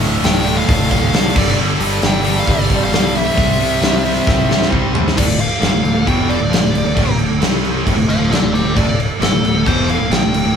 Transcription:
Already playing: D2 A2 D3 D4 A4 F5
0.01 D1 D2 A2 D3, open hi-hat
0.22 D1 D2 A2 D3 G5, snare, open hi-hat
0.44 D2 A2 D3, open hi-hat
0.57 F5
0.68 D1 D2 A2 D3, kick, open hi-hat
0.90 D1 D2 A2 D3 F5, kick, open hi-hat
1.12 C2 D2 A2 D3, snare, open hi-hat
1.34 G1 G2 D3 G3 D4 D5, kick, crash
1.57 G1 G2 D3 G3
1.79 G1 G2 D3 G3, open hi-hat
2.01 G1 G2 D3 G3, snare, open hi-hat
2.06 G5
2.23 G2 D3 G3, open hi-hat
2.39 F5
2.46 G1 G2 D3 G3, kick, open hi-hat
2.51 D5
2.68 G1 G2 D3 G3, kick, open hi-hat
2.76 D5
2.84 F5
2.91 B1 G2 D3 G3, snare, open hi-hat
3.14 G2 D3 G3 E5, open hi-hat
3.36 C2 C3 G3 C4 G4 D5, kick, open hi-hat
3.58 C2 C3 G3 C4, open hi-hat
3.81 C2 C3 G3 C4, snare, open hi-hat
4.03 C3 G3 C4, open hi-hat
4.26 C2 C3 G3 C4, kick, snare
4.48 C2 C3 G3 C4, snare
4.62 snare
4.69 C2 C3 G3 C4, kick
4.93 C3 G3 C4, floor tom
5.08 snare
5.16 D1 D2 A2 D4 A4 D5 F5, kick, crash
5.28 D1 D2 A2
5.40 F5, crash
5.60 G1 G2 D3, snare, crash
5.72 D1 D2 A2
5.82 D1 D2 A2, crash
5.94 D1 D2 A2
6.05 E1 E2 B2 E3 G5, kick, crash
6.29 D5, crash
6.38 D1 D2 A2
6.49 A#1 A#2 F3, crash
6.54 snare
6.60 D1 D2 A2
6.72 D1 D2 A2, crash
6.83 D1 D2 A2
6.95 D1 D2 A2, kick, crash
7.07 D1 D2 A2
7.18 D1 D2 A2, crash
7.29 D1 D2 A2
7.39 C2 C3 G3 C4 G4 D5, snare, crash
7.65 crash
7.84 D1 D2 A2 D4 A4 F5, kick, crash
7.96 D1 D2 A2
8.07 D1 D2 A2 C5 F5, crash
8.18 D1 D2 A2
8.30 A#1 A#2 F3 A4 D5, crash
8.34 snare
8.41 D1 D2 A2
8.52 D1 D2 A2 G4 C5, crash
8.64 D1 D2 A2
8.74 D1 D2 A2 D5, kick, crash
8.87 D1 D2 A2
9.00 crash
9.19 G1 G2 D3 A4, snare, crash
9.31 D1 D2 A2
9.43 D1 D2 A2, crash
9.54 D1 D2 A2
9.64 E1 E2 B2 E3 C5, kick, crash
9.89 F5, crash
9.99 D1 D2 A2
10.10 A#1 A#2 F3 G5, snare, crash
10.21 D1 D2 A2
10.33 D1 D2 A2, crash
10.44 D1 D2 A2

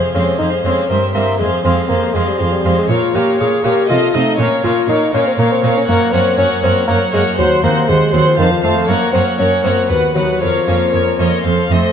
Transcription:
Already playing: F2 G#4 C5 F5
0.14 F2 G#3 C4 C#4 F4 G#4 C5 F5
0.39 F2 D#4 G#4 C5 F5
0.64 F2 G#3 C4 C#4 F4 G#4 C5 F5
0.89 G2 C4 A#4 C5 E5
1.14 G2 A#3 C4 E4 A#4 C5 E5
1.39 F2 G#3 G#4 C5 F5
1.64 F2 G#3 C4 F4 G#4 C5 F5
1.89 F2 A#3 G#4 C5 F5
2.14 F2 G#3 C4 F4 G#4 C5 F5
2.28 G3
2.40 F2 F3 G#4 C5 F5
2.53 G3
2.64 F2 G#3 C4 F4 G#4 C5 F5
2.79 G#3
2.89 A#2 F4 A#4 C#5 F5
3.15 A#2 A#3 C#4 F4 G4 A#4 C#5 F5
3.39 A#2 G#4 A#4 C#5 F5
3.64 A#2 A#3 C#4 F4 G4 A#4 C#5 F5
3.89 C3 F4 A4 D#5 F5
4.14 C3 A3 D#4 A4 D#5 F5
4.38 A#2 C#4 A#4 C#5 F5
4.63 A#2 A#3 C#4 F4 A#4 C#5 F5
4.88 A#2 D#4 A#4 C#5 F5
5.13 A#2 A#3 C#4 A#4 C#5 F5
5.27 C4
5.38 A#2 A#3 A#4 C#5 F5
5.51 C4
5.63 A#2 A#3 C#4 A#4 C#5 F5
5.78 C#4
5.88 F#2 A#3 A#4 C#5 F#5
6.13 F#2 A#3 C4 C#4 A#4 C#5 F#5
6.38 F#2 C#4 A#4 C#5 F#5
6.63 F#2 A#3 C4 C#4 A#4 C#5 F#5
6.88 F#2 A#3 A#4 C#5 F#5
7.13 F#2 G#3 A#3 C#4 A#4 C#5 F#5
7.38 D#2 F#3 C5 F#5
7.63 D#2 A#3 C4 C5 F#5
7.88 D#2 G#3 C5 F#5
8.13 D#2 F#3 C4 C5 F#5
8.27 F3
8.38 F2 D#3 C5 F5 A5
8.51 F3
8.63 F2 A3 C4 C5 F5 A5
8.77 A3
8.88 F#2 A#3 A#4 C#5 F#5
9.13 F#2 A#3 C4 C#4 A#4 C#5 F#5
9.38 F#2 C#4 A#4 C#5 F#5
9.64 F#2 A#3 C4 C#4 A#4 C#5 F#5
9.89 D#2 B3 F#4 B4 F#5
10.15 D#2 F#3 B3 D#4 F#4 B4 F#5
10.41 F2 F3 A#4 C#5 F5
10.67 F2 A#3 C#4 A#4 C#5 F5
10.93 F2 A#4 C#5
11.19 F2 A#3 C#4 A#4 C#5 D#5
11.45 F2 A4 C5 F5
11.70 F2 A3 C4 A4 C5 D#5

